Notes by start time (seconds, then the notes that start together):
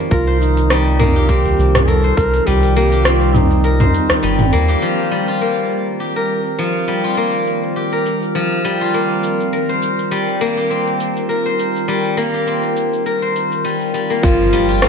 Already playing: D#3 F3 G3 A#3 C4 F4 G4 A#4 A5
0.11 C2 F4 A#4, kick, open hi-hat, udu, shaker
0.27 C5, shaker
0.41 D#4, shaker
0.57 open hi-hat, shaker
0.70 G3, cross-stick, open hi-hat, shaker
0.88 shaker
0.99 A#3, mid tom, shaker
1.16 G4, shaker
1.28 C4 G4 A#4, kick, open hi-hat, shaker
1.45 open hi-hat, udu, shaker
1.58 C2, udu, shaker
1.75 cross-stick, mid tom, open hi-hat, shaker
1.88 A4 A#4, open hi-hat, shaker
2.04 C5, shaker
2.17 C2 A#4, kick, shaker
2.34 open hi-hat, shaker
2.47 C2 G3 G4, open hi-hat, udu, shaker
2.63 open hi-hat, shaker
2.76 A#3 G4, shaker
2.92 G4, open hi-hat, shaker
3.05 C4 F4, cross-stick, open hi-hat, shaker
3.21 open hi-hat, shaker
3.35 D#4, mid tom, shaker
3.51 open hi-hat, shaker
3.64 A#4, open hi-hat, shaker
3.80 C5, mid tom, open hi-hat, udu, shaker
3.94 shaker
4.10 cross-stick, open hi-hat, udu, shaker
4.23 G1 G3, open hi-hat, shaker
4.39 mid tom, open hi-hat, shaker
4.53 D#2 A#3, shaker
4.68 G4, open hi-hat, shaker
4.82 F3, shaker
4.98 shaker
5.11 G3, shaker
5.28 F4, shaker
5.41 A#3, shaker
5.70 shaker
5.87 shaker
6.00 G4
6.16 A#4
6.29 shaker
6.46 shaker
6.59 F3
6.88 G3, shaker
7.04 F4, shaker
7.17 A#3, shaker
7.34 shaker
7.47 shaker
7.63 shaker
7.76 G4, shaker
7.92 A#4, shaker
8.06 shaker
8.22 shaker
8.35 F3, shaker
8.51 shaker
8.65 G3, shaker
8.81 F4, shaker
8.94 A#3, shaker
9.11 shaker
9.24 shaker
9.40 shaker
9.53 A#4, shaker
9.69 C5, shaker
9.83 shaker
9.99 shaker
10.11 G3, shaker
10.28 shaker
10.41 A#3, shaker
10.57 G4, shaker
10.70 C4, shaker
10.87 shaker
11.00 shaker
11.17 shaker
11.29 A#4, shaker
11.46 C5, shaker
11.59 shaker
11.76 shaker
11.88 G3, shaker
12.05 shaker
12.17 A#3, shaker
12.34 G4, shaker
12.47 C4, shaker
12.63 shaker
12.77 shaker
12.93 shaker
13.06 A#4, shaker
13.22 C5, shaker
13.36 shaker
13.52 shaker
13.65 G3, shaker
13.81 shaker
13.94 G3, shaker
14.10 A#3, shaker
14.23 G1 F3 F4, kick, open hi-hat, impact, shaker
14.40 shaker
14.53 G3, shaker
14.69 F4, open hi-hat, shaker
14.82 A#3, cross-stick, open hi-hat, shaker